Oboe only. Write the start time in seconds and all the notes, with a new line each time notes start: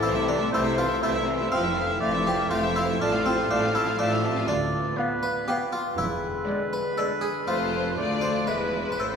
Already playing: D5
0.52 C5
1.02 E5
1.52 F5
2.00 D5
2.50 C5
3.00 F5
3.99 E5
4.48 D5
4.97 B4
5.97 B4
7.97 D5
8.48 B4
9.00 C5